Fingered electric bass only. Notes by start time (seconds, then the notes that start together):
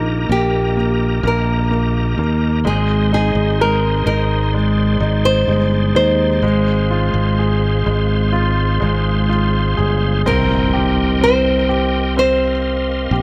Already playing: A#1
0.29 A#1
1.23 A#1
2.18 D#2
2.65 G#1
3.35 G#1
4.06 G#1
5.00 G#1
5.48 G1
5.95 D#2
6.42 G#1
7.14 G#1
7.86 G#1
8.82 G#1
9.78 G1
10.27 C2
13.11 A#1